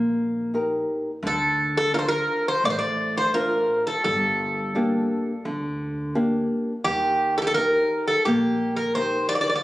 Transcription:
Already playing: A#1 A#3
0.54 D#4 G4 A#4
1.23 D2 D3
1.27 A4
1.77 A4
1.93 D4 F4 A#4
1.99 C5
2.08 A#4
2.48 C5
2.64 A1 A3 D5
2.70 C5
2.79 D5
3.17 C5
3.34 D4 F4 A#4
3.87 A4
4.04 G1 G3 A4
4.75 A#3 D4 G4
5.45 D2 D3
6.15 A#3 D4 G4
6.84 D#2 D#3 G4
7.38 A4
7.42 G4
7.47 A4
7.54 D#4 G4 A#4
8.08 A4
8.25 A#1 A#3 G4
8.76 A#4
8.95 D#4 G4 A#4 C5
9.29 D5
9.35 D5
9.41 D5
9.50 D5
9.55 D5

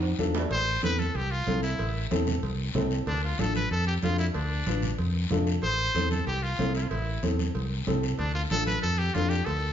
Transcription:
Already playing: F2
0.03 high timbale
0.18 E2 D4 F4 A4, high conga, low timbale, short guiro
0.35 low timbale, short guiro
0.51 A1 C5, cowbell, long guiro
0.83 E2 C4 E4 A4 B4, cowbell, high conga, short guiro
0.99 A4, high conga, short guiro
1.15 C2 G4, cowbell, long guiro
1.31 F4
1.47 C2 C4 E4 A4, cowbell, high conga, short guiro
1.62 E4, short guiro
1.79 A1, cowbell, long guiro
2.11 E2 C4 E4 A4, cowbell, high conga, short guiro
2.27 high conga, low conga, short guiro
2.43 C2, cowbell, long guiro
2.75 C2 C4 E4 A4, cowbell, high conga, low conga, low timbale, short guiro
2.91 short guiro
3.07 D2 D4, cowbell, long guiro
3.24 F4
3.39 A1 D4 F4 A4, cowbell, high conga, short guiro
3.55 B4, high conga, short guiro
3.71 F2 A4, cowbell, long guiro
3.87 G4
4.03 F2 D4 F4 A4, cowbell, high conga, low timbale, short guiro
4.18 E4, short guiro
4.34 D2 D4, cowbell, long guiro
4.66 A1 D4 F4 B4, cowbell, high conga, short guiro
4.83 high conga, low conga, short guiro
4.98 F2, cowbell, long guiro
5.31 F2 D4 F4 A4, cowbell, high conga, low conga, low timbale, short guiro
5.47 short guiro
5.63 A1 C5, cowbell
5.95 E2 C4 E4 A4, cowbell, high conga, short guiro
6.11 A4, high conga, short guiro
6.27 C2 G4, cowbell, long guiro
6.43 F4
6.59 C2 C4 E4 A4, cowbell, high conga, low timbale, short guiro
6.75 E4, short guiro
6.82 F4
6.89 A1 E4, cowbell, long guiro
7.23 E2 C4 E4 A4, cowbell, high conga, short guiro
7.39 high conga, short guiro
7.55 C2, cowbell, long guiro
7.87 C2 C4 E4 A4, cowbell, high conga, low conga, short guiro
8.03 short guiro
8.19 D2 D4, cowbell, long guiro
8.35 F4
8.51 A1 D4 F4 A4, cowbell, high conga, short guiro
8.67 B4, high conga, short guiro
8.82 F2 A4, cowbell, long guiro
8.98 G4
9.14 F2 D4 F4 A4, cowbell, high conga, low timbale, short guiro
9.29 G4, short guiro
9.45 D2 A4, cowbell, long guiro

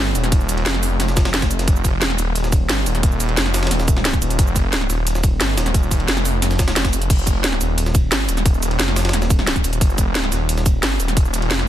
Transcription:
0.00 G1
0.15 D#1, closed hi-hat, ride, cabasa
0.24 snare, closed hi-hat
0.32 kick, closed hi-hat, ride
0.41 cabasa
0.49 closed hi-hat, ride, cabasa
0.58 ride
0.66 F1, snare, closed hi-hat, ride
0.74 snare
0.83 open hi-hat, ride, cabasa
1.00 F1, snare, closed hi-hat, ride
1.08 snare, cabasa
1.17 kick, snare, closed hi-hat, ride, cabasa
1.25 snare, ride
1.34 snare, closed hi-hat, ride
1.42 kick, snare, closed hi-hat, ride, cabasa
1.51 closed hi-hat, cabasa
1.59 snare, closed hi-hat, ride
1.68 F1, kick, closed hi-hat, ride
1.76 cabasa
1.85 kick, closed hi-hat, ride, cabasa
2.02 snare, closed hi-hat, ride
2.10 snare
2.18 D#1, closed hi-hat, ride, cabasa
2.35 closed hi-hat, ride
2.44 snare, cabasa
2.52 kick, closed hi-hat, ride, cabasa
2.69 G1, snare, closed hi-hat, ride
2.86 D#1, closed hi-hat, ride, cabasa
2.95 snare, closed hi-hat
3.03 kick, closed hi-hat, ride
3.12 cabasa
3.20 closed hi-hat, ride, cabasa
3.29 ride
3.37 F1, snare, closed hi-hat, ride
3.46 snare
3.54 snare, open hi-hat, ride, cabasa
3.63 snare, ride
3.67 snare, ride
3.71 D#1, snare, closed hi-hat, ride
3.80 snare, cabasa
3.88 kick, closed hi-hat, ride, cabasa
3.96 snare
4.05 snare, closed hi-hat, ride
4.13 kick, snare, closed hi-hat, cabasa
4.22 D#1, closed hi-hat, ride, cabasa
4.30 closed hi-hat, ride
4.39 F1, kick, closed hi-hat, ride
4.47 cabasa
4.56 kick, closed hi-hat, ride, cabasa
4.73 snare, closed hi-hat, ride
4.81 snare
4.90 D#1, snare, closed hi-hat, ride, cabasa
5.07 closed hi-hat, ride
5.15 snare, cabasa
5.24 kick, closed hi-hat, ride, cabasa
5.41 G1, snare, closed hi-hat, ride
5.57 D#1, snare, closed hi-hat, ride, cabasa
5.66 snare, closed hi-hat
5.74 kick, closed hi-hat, ride
5.83 cabasa
5.91 kick, closed hi-hat, ride, cabasa
6.00 ride
6.08 F1, snare, closed hi-hat, ride
6.17 snare, cabasa
6.25 open hi-hat, ride, cabasa
6.42 F1, snare, closed hi-hat, ride
6.51 snare, cabasa
6.59 kick, snare, closed hi-hat, ride, cabasa
6.68 snare, closed hi-hat, ride
6.76 F1, snare, closed hi-hat, ride
6.85 kick, snare, closed hi-hat, ride, cabasa
6.93 closed hi-hat, ride, cabasa
7.02 closed hi-hat, ride
7.10 F1, kick, closed hi-hat, crash, ride
7.19 cabasa
7.27 kick, closed hi-hat, ride, cabasa
7.44 snare, closed hi-hat, ride
7.52 snare
7.61 D#1, closed hi-hat, ride, cabasa
7.78 closed hi-hat, ride
7.86 snare, cabasa
7.95 kick, closed hi-hat, ride, cabasa
8.12 G1, snare, closed hi-hat, ride
8.29 D#1, closed hi-hat, ride, cabasa
8.37 snare, closed hi-hat
8.46 kick, closed hi-hat, ride
8.54 cabasa
8.63 closed hi-hat, ride, cabasa
8.71 ride
8.79 F1, snare, closed hi-hat, ride
8.88 snare
8.96 snare, open hi-hat, ride, cabasa
9.05 snare, ride
9.09 snare, ride
9.13 D#1, snare, closed hi-hat, ride
9.22 snare, cabasa
9.30 kick, closed hi-hat, ride, cabasa
9.39 snare
9.47 snare, closed hi-hat, ride
9.56 kick, snare, closed hi-hat, cabasa
9.64 D#1, closed hi-hat, ride, cabasa
9.73 closed hi-hat, ride
9.81 F1, kick, closed hi-hat, ride
9.90 cabasa
9.98 kick, closed hi-hat, ride, cabasa
10.15 snare, closed hi-hat, ride
10.24 snare
10.32 D#1, snare, closed hi-hat, ride, cabasa
10.49 closed hi-hat, ride
10.57 snare, cabasa
10.66 kick, closed hi-hat, ride, cabasa
10.83 G1, snare, closed hi-hat, ride
11.00 D#1, closed hi-hat, ride, cabasa
11.08 snare, closed hi-hat
11.17 kick, closed hi-hat, ride
11.25 cabasa
11.34 closed hi-hat, ride, cabasa
11.42 ride
11.51 F1, snare, closed hi-hat, ride
11.59 snare

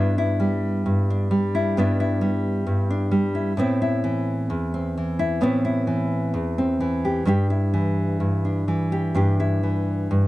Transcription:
Already playing: G2 B3 D4 E4
0.18 E4
0.40 G3
0.86 G2
1.10 D4
1.31 G3
1.55 E4
1.77 G2 B3 D4 E4
2.00 E4
2.21 G3
2.67 G2
2.90 D4
3.11 G3
3.35 E4
3.57 A2 B3 C4 E4
3.82 E4
4.04 E3
4.50 E2
4.74 C4
4.98 E3
5.19 E4
5.41 A2 B3 C4 E4
5.65 E4
5.87 E3
6.34 E2
6.58 C4
6.80 E3
7.05 G4
7.25 G2 G3 D4 G4
7.50 E4
7.74 E3
8.20 G2
8.45 D4
8.68 E3
8.92 G4
9.15 G2 G3 D4 G4
9.40 E4
9.63 E3
10.11 G2

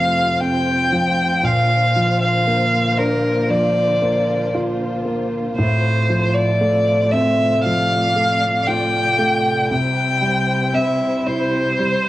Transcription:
Already playing: F2 C3 F3 A3 F4 C5 F5
0.40 C4 G5
0.92 F3
1.43 A#2 D3 A#3 F5
1.96 F3
2.22 F5
2.47 A#3
2.98 D4 A#4
3.50 F3 D5
4.02 A#3
4.54 F4
5.05 A#3
5.57 A2 C3 A3 C5
6.09 F3
6.34 D5
6.61 A3
7.11 C4 E5
7.64 F3 D5 F5
8.16 A3
8.67 F4 G5
9.18 A3
9.71 C3 G3 E4 C5 G5
10.22 G3
10.74 C4 E5
11.26 E4 C5
11.79 G3

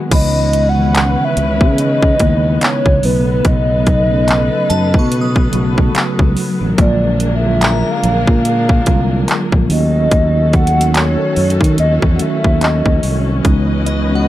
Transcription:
Already playing: D#3 F#3 G#3 B3 F#4 F#5 G#5
0.10 C#2 C#3 E3 G#3 B3 C#4 D#4 B4 D#5 B5, kick, closed hi-hat, crash
0.53 closed hi-hat
0.69 F#5
0.76 C#3 D#3 E3 G#3 B3
0.95 clap, closed hi-hat
1.24 E5
1.37 C#2, closed hi-hat
1.61 C#3, kick
1.78 D#5, closed hi-hat
2.02 kick
2.18 D#2 C#3 G#3 B3 D#4 E4, kick, closed hi-hat
2.61 C#5, clap, closed hi-hat
2.86 C#2, kick
3.01 B1 C#3 F#3 A3 B3 D#4 A4 B4, open hi-hat
3.45 B1 D#5, kick, closed hi-hat
3.87 kick, closed hi-hat
4.09 C#3 F#3 A3 B3 C#4
4.28 clap, closed hi-hat
4.70 F#2 A5, closed hi-hat
4.94 B2, kick
4.99 C#6
5.12 closed hi-hat
5.21 D#6
5.36 kick
5.51 B1 C#3 F#3 A3 B3 F#4, closed hi-hat
5.78 kick
5.95 muted fingered electric bass stroke, clap, closed hi-hat
6.19 C#2, kick
6.37 open hi-hat
6.61 A1
6.76 A#1 D3 F#3 G#3 A#3 D4 F4 G#4 A#4 D5, kick, closed hi-hat
7.20 closed hi-hat
7.35 E5
7.42 D3 F#3 G#3 A#3 F4
7.61 A#5, clap, closed hi-hat
7.91 F5
8.04 A#1, closed hi-hat
8.27 A#2, kick
8.45 F5, closed hi-hat
8.69 kick
8.85 C2 D3 F#3 G#3 A#3 F4, kick, closed hi-hat
9.28 clap, closed hi-hat
9.52 A#1, kick
9.68 D#2 D#3 F#3 A3 C#4 F#4 A4 D#5, open hi-hat
10.11 D#2, kick, closed hi-hat
10.53 F#5, kick, closed hi-hat
10.67 closed hi-hat
10.75 D#3 F#3 A3 C#4 F#4
10.81 closed hi-hat
10.95 C#5, clap, closed hi-hat
11.36 F#2, closed hi-hat, open hi-hat
11.50 closed hi-hat
11.61 D#3, kick, closed hi-hat
11.78 D#2 D#5, closed hi-hat
12.02 E2, kick
12.15 D#3 F#3 F#5
12.19 A3 C#4 F#4 E5, closed hi-hat
12.44 D#2, kick
12.61 D#5, clap, closed hi-hat
12.86 D#2, kick
13.03 C2, open hi-hat
13.43 C#2 C#3 E3 G#3 B3 C#4 D#4 B4 D#5, kick, closed hi-hat
13.86 D#5, closed hi-hat
14.09 E3 G#3 B3 C#4 F#4
14.15 F#5

